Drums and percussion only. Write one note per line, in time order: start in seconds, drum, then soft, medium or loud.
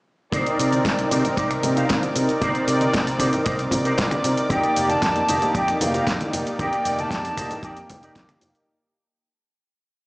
0.32 kick loud
0.32 closed hi-hat medium
0.32 high conga loud
0.32 shaker soft
0.46 closed hi-hat soft
0.46 shaker soft
0.59 open hi-hat loud
0.59 shaker medium
0.73 closed hi-hat soft
0.73 high conga medium
0.73 shaker soft
0.85 kick loud
0.85 snare loud
0.85 closed hi-hat medium
0.85 shaker soft
0.99 closed hi-hat soft
0.99 shaker soft
1.11 open hi-hat loud
1.11 high conga medium
1.11 shaker medium
1.24 closed hi-hat soft
1.24 low conga medium
1.24 shaker soft
1.37 kick loud
1.37 closed hi-hat medium
1.37 shaker soft
1.51 finger snap medium
1.51 closed hi-hat soft
1.51 shaker soft
1.62 open hi-hat loud
1.62 high conga medium
1.62 low conga medium
1.62 shaker medium
1.76 closed hi-hat soft
1.76 high bongo medium
1.76 shaker soft
1.90 kick loud
1.90 snare loud
1.90 closed hi-hat medium
1.90 shaker soft
2.02 closed hi-hat soft
2.02 high conga medium
2.02 shaker soft
2.15 open hi-hat loud
2.15 high bongo medium
2.15 shaker medium
2.29 closed hi-hat soft
2.29 shaker soft
2.41 kick loud
2.41 closed hi-hat medium
2.41 high conga medium
2.41 shaker soft
2.55 closed hi-hat soft
2.55 shaker soft
2.68 open hi-hat loud
2.68 shaker medium
2.81 closed hi-hat soft
2.81 high conga medium
2.81 shaker soft
2.94 kick loud
2.94 snare loud
2.94 closed hi-hat medium
2.94 shaker soft
3.07 open hi-hat medium
3.07 shaker soft
3.19 finger snap medium
3.19 kick medium
3.19 open hi-hat loud
3.19 high conga loud
3.19 shaker medium
3.33 closed hi-hat soft
3.33 low conga medium
3.33 shaker soft
3.46 kick loud
3.46 closed hi-hat medium
3.46 shaker soft
3.59 closed hi-hat soft
3.59 shaker soft
3.71 kick medium
3.71 open hi-hat loud
3.71 high bongo medium
3.71 high conga medium
3.71 low conga loud
3.71 shaker medium
3.85 closed hi-hat soft
3.85 shaker soft
3.98 kick loud
3.98 snare loud
3.98 closed hi-hat medium
3.98 high bongo medium
3.98 shaker soft
4.11 finger snap medium
4.11 closed hi-hat soft
4.11 high conga loud
4.11 shaker soft
4.24 open hi-hat loud
4.24 high bongo medium
4.24 shaker medium
4.37 closed hi-hat soft
4.37 shaker soft
4.50 kick loud
4.50 closed hi-hat medium
4.50 high conga loud
4.50 shaker soft
4.63 closed hi-hat soft
4.63 shaker soft
4.76 open hi-hat loud
4.76 shaker medium
4.90 closed hi-hat soft
4.90 high conga medium
4.90 shaker soft
5.02 kick loud
5.02 snare loud
5.02 closed hi-hat medium
5.02 shaker soft
5.16 closed hi-hat soft
5.16 shaker soft
5.29 open hi-hat loud
5.29 high conga loud
5.29 shaker medium
5.42 closed hi-hat soft
5.42 low conga medium
5.42 shaker soft
5.55 kick loud
5.55 closed hi-hat medium
5.55 shaker soft
5.68 finger snap medium
5.68 closed hi-hat soft
5.68 shaker soft
5.80 open hi-hat loud
5.80 high conga medium
5.80 low conga loud
5.80 shaker medium
5.94 closed hi-hat soft
5.94 high bongo medium
5.94 shaker soft
6.07 kick loud
6.07 snare loud
6.07 closed hi-hat medium
6.07 shaker soft
6.21 closed hi-hat soft
6.21 high conga loud
6.21 shaker soft
6.33 open hi-hat loud
6.33 high bongo soft
6.33 shaker medium
6.47 closed hi-hat soft
6.47 shaker soft
6.59 kick loud
6.59 closed hi-hat medium
6.59 high conga loud
6.59 shaker soft
6.73 closed hi-hat soft
6.73 shaker soft
6.85 open hi-hat loud
6.85 shaker medium
6.98 closed hi-hat soft
6.98 high conga medium
6.98 shaker soft
7.11 kick loud
7.11 snare loud
7.11 closed hi-hat medium
7.11 shaker soft
7.25 open hi-hat medium
7.25 shaker soft
7.37 finger snap medium
7.37 kick medium
7.37 open hi-hat loud
7.37 high conga loud
7.37 shaker medium
7.50 closed hi-hat soft
7.50 low conga medium
7.50 shaker soft
7.63 kick loud
7.63 closed hi-hat medium
7.63 shaker soft
7.77 closed hi-hat soft
7.77 shaker soft
7.90 kick medium
7.90 open hi-hat loud
7.90 high bongo medium
7.90 high conga medium
7.90 low conga medium
7.90 shaker medium
8.03 closed hi-hat soft
8.03 shaker soft
8.16 kick loud
8.16 snare loud
8.16 closed hi-hat medium
8.16 high bongo medium
8.16 shaker soft
8.29 finger snap medium
8.29 closed hi-hat soft
8.29 high conga medium
8.29 shaker soft
8.41 open hi-hat loud
8.41 high bongo medium
8.41 shaker medium
8.55 closed hi-hat soft
8.55 shaker soft